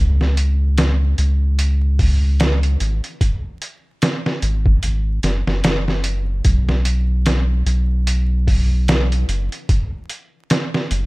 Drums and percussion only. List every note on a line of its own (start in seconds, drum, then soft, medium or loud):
0.21 snare soft
0.37 closed hi-hat medium
0.78 snare loud
0.78 closed hi-hat medium
1.18 closed hi-hat medium
1.59 closed hi-hat medium
1.99 kick medium
1.99 open hi-hat medium
2.40 snare loud
2.40 closed hi-hat medium
2.63 closed hi-hat soft
2.80 closed hi-hat medium
3.04 closed hi-hat soft
3.21 kick medium
3.21 closed hi-hat medium
3.62 closed hi-hat medium
4.02 snare loud
4.02 closed hi-hat medium
4.26 snare soft
4.42 closed hi-hat medium
4.66 kick medium
4.83 closed hi-hat medium
5.23 snare soft
5.23 closed hi-hat medium
5.47 snare soft
5.64 snare loud
5.64 closed hi-hat medium
5.88 snare soft
6.04 closed hi-hat medium
6.45 kick medium
6.45 closed hi-hat medium
6.69 snare soft
6.85 closed hi-hat medium
7.26 snare loud
7.26 closed hi-hat medium
7.66 closed hi-hat medium
8.07 closed hi-hat medium
8.48 kick medium
8.48 open hi-hat medium
8.88 snare loud
8.88 closed hi-hat medium
9.12 closed hi-hat soft
9.29 closed hi-hat medium
9.52 closed hi-hat soft
9.69 kick medium
9.69 closed hi-hat medium
10.10 closed hi-hat medium
10.50 snare loud
10.50 closed hi-hat medium
10.74 snare medium
10.91 closed hi-hat medium